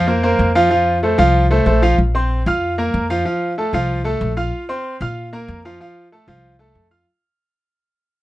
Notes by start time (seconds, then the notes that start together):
Already playing: F2
0.07 A#3 A#4 C5
0.23 A#3 A#4 C5
0.39 F2
0.55 F3 F4 F5
0.70 F3 F4 F5
1.03 A3 A4 C5
1.18 C2 F3 F4 F5
1.51 A3 A4 C5
1.66 A#1 A3 A4 C5
1.82 F3 F4 F5
1.98 A#1
2.15 C4 C5 C6
2.46 F2 F4 F5 F6
2.78 A#3 A#4 A#5
2.94 F2
3.10 F3 F4 F5
3.25 F3 F4 F5
3.58 A3 A4 A5
3.73 C2 F3 F4 F5
4.04 A3 A4 A5
4.21 A#1
4.37 F4 F5 F6
4.69 C4 C5 C6
5.01 A#2 F4 F5 F6
5.33 A#3 A#4 A#5
5.48 F2
5.65 F3 F4 F5
5.80 F3 F4 F5
6.12 A3 A4 A5
6.28 C2 F3 F4 F5
6.59 A3 A4 A5
6.75 F2
6.91 F4 F5 F6